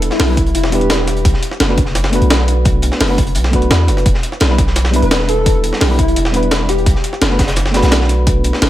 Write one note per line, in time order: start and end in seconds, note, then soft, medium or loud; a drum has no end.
0.00 0.25 G3 medium
0.00 0.26 B3 medium
0.00 0.26 D4 medium
0.00 0.27 E4 medium
0.00 0.28 B4 loud
0.00 closed hi-hat medium
0.10 0.32 E4 loud
0.10 snare medium
0.10 snare soft
0.20 0.56 B1 medium
0.20 snare loud
0.20 closed hi-hat medium
0.20 open hi-hat medium
0.27 0.37 G3 medium
0.27 0.38 B3 medium
0.27 0.38 D4 medium
0.27 0.38 E4 medium
0.27 0.39 B4 medium
0.37 kick loud
0.37 closed hi-hat medium
0.46 closed hi-hat soft
0.55 1.24 E1 medium
0.55 0.61 E4 medium
0.55 closed hi-hat medium
0.64 0.69 E4 medium
0.64 snare medium
0.70 1.23 G3 medium
0.70 1.23 B3 medium
0.70 1.24 D4 medium
0.70 1.22 G4 medium
0.70 closed hi-hat medium
0.74 1.25 E4 medium
0.74 1.25 B4 loud
0.81 closed hi-hat soft
0.90 snare loud
0.90 closed hi-hat medium
1.07 snare soft
1.07 closed hi-hat medium
1.17 closed hi-hat soft
1.25 1.33 B1 loud
1.25 kick loud
1.25 closed hi-hat medium
1.25 closed hi-hat loud
1.34 snare soft
1.43 closed hi-hat medium
1.51 snare soft
1.60 2.20 F#1 medium
1.60 snare loud
1.60 closed hi-hat medium
1.68 1.78 A3 medium
1.68 1.78 B3 medium
1.68 1.78 D4 medium
1.68 1.79 F#4 medium
1.68 1.79 B4 medium
1.68 snare soft
1.78 kick loud
1.78 closed hi-hat medium
1.86 snare soft
1.95 snare medium
1.95 closed hi-hat medium
2.04 snare medium
2.04 snare soft
2.10 3.06 A3 medium
2.10 3.07 B3 medium
2.10 3.07 D4 medium
2.10 closed hi-hat medium
2.14 3.08 F#4 medium
2.14 3.08 B4 medium
2.21 2.90 B1 medium
2.21 closed hi-hat soft
2.30 snare loud
2.30 closed hi-hat medium
2.38 snare medium
2.48 closed hi-hat medium
2.65 kick loud
2.65 closed hi-hat medium
2.82 closed hi-hat medium
2.92 snare medium
2.92 snare soft
3.00 3.37 F#1 loud
3.00 snare loud
3.00 closed hi-hat medium
3.00 open hi-hat medium
3.08 3.18 A3 medium
3.08 3.18 B3 medium
3.08 3.19 D4 medium
3.08 3.19 F#4 medium
3.08 3.19 B4 medium
3.18 kick loud
3.18 closed hi-hat medium
3.27 closed hi-hat soft
3.35 3.70 B1 loud
3.35 closed hi-hat loud
3.35 closed hi-hat medium
3.44 snare medium
3.44 snare soft
3.50 4.03 A3 medium
3.50 4.04 B3 medium
3.50 4.05 D4 medium
3.50 kick medium
3.50 closed hi-hat medium
3.54 4.05 F#4 medium
3.54 4.06 B4 loud
3.62 closed hi-hat soft
3.71 3.90 E2 loud
3.71 snare loud
3.71 closed hi-hat medium
3.88 4.04 F#1 loud
3.88 snare soft
3.88 closed hi-hat medium
3.97 snare soft
3.97 closed hi-hat soft
4.06 4.14 E1 loud
4.06 kick loud
4.06 closed hi-hat medium
4.14 snare soft
4.23 closed hi-hat medium
4.32 snare soft
4.40 5.01 B1 medium
4.40 snare loud
4.40 closed hi-hat medium
4.48 4.58 G3 medium
4.48 4.59 B3 medium
4.48 4.59 D4 medium
4.48 4.59 E4 medium
4.48 4.60 B4 medium
4.48 snare soft
4.58 kick loud
4.58 closed hi-hat medium
4.67 snare soft
4.76 snare medium
4.76 closed hi-hat loud
4.76 closed hi-hat medium
4.84 snare medium
4.84 snare soft
4.91 5.86 G3 medium
4.91 5.87 B3 medium
4.91 5.88 D4 medium
4.91 closed hi-hat medium
4.95 5.89 E4 medium
4.95 5.89 B4 loud
5.02 5.71 E1 medium
5.02 5.27 B4 medium
5.02 closed hi-hat soft
5.11 snare loud
5.11 closed hi-hat medium
5.11 closed hi-hat loud
5.19 snare medium
5.29 5.50 A4 medium
5.29 closed hi-hat medium
5.46 kick loud
5.46 closed hi-hat medium
5.64 closed hi-hat medium
5.73 snare medium
5.73 snare soft
5.81 6.18 B1 medium
5.81 5.97 G4 medium
5.81 snare loud
5.81 closed hi-hat medium
5.81 open hi-hat medium
5.88 5.99 G3 medium
5.88 5.99 B3 medium
5.88 5.99 D4 medium
5.88 6.00 E4 medium
5.88 6.00 B4 medium
5.99 6.20 E4 medium
5.99 kick loud
5.99 closed hi-hat medium
6.08 closed hi-hat soft
6.16 6.85 E1 medium
6.16 closed hi-hat medium
6.16 closed hi-hat loud
6.25 snare medium
6.25 snare soft
6.31 6.84 G3 medium
6.31 6.85 B3 medium
6.31 6.85 D4 medium
6.31 6.86 E4 medium
6.31 closed hi-hat medium
6.36 6.87 B4 loud
6.43 closed hi-hat soft
6.51 snare loud
6.51 closed hi-hat medium
6.69 6.90 G4 medium
6.69 snare soft
6.69 closed hi-hat medium
6.78 closed hi-hat soft
6.86 6.94 B1 loud
6.86 kick loud
6.86 closed hi-hat loud
6.86 closed hi-hat medium
6.95 snare soft
7.04 closed hi-hat medium
7.13 snare soft
7.21 7.82 F#1 medium
7.21 snare loud
7.21 closed hi-hat loud
7.21 closed hi-hat medium
7.29 7.39 A3 medium
7.29 7.40 B3 medium
7.29 7.40 D4 medium
7.29 7.40 F#4 medium
7.29 7.41 B4 medium
7.29 snare soft
7.39 kick loud
7.39 snare medium
7.39 closed hi-hat medium
7.48 snare loud
7.48 closed hi-hat medium
7.56 snare medium
7.56 closed hi-hat loud
7.56 closed hi-hat medium
7.66 snare medium
7.66 snare soft
7.71 8.67 A3 medium
7.71 8.68 B3 medium
7.71 8.69 D4 medium
7.71 snare loud
7.71 closed hi-hat medium
7.75 8.69 F#4 medium
7.75 8.70 B4 loud
7.82 8.52 B1 medium
7.82 snare loud
7.82 closed hi-hat medium
7.82 closed hi-hat soft
7.91 snare loud
7.91 closed hi-hat medium
7.91 closed hi-hat loud
8.01 snare medium
8.09 closed hi-hat medium
8.27 kick loud
8.27 closed hi-hat loud
8.27 closed hi-hat medium
8.44 closed hi-hat medium
8.53 snare medium
8.53 snare soft
8.62 8.70 F#1 medium
8.62 snare loud
8.62 closed hi-hat loud
8.62 open hi-hat medium